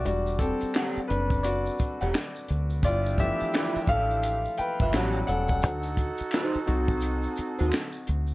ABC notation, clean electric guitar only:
X:1
M:4/4
L:1/16
Q:"Swing 16ths" 1/4=86
K:Em
V:1 name="Clean electric guitar"
z4 [Gdf] z6 [Gdf] z4 | z4 [=FBe] z6 [FBe] [G^c^f] z3 | z4 [_EFc] z6 [EFc] z4 |]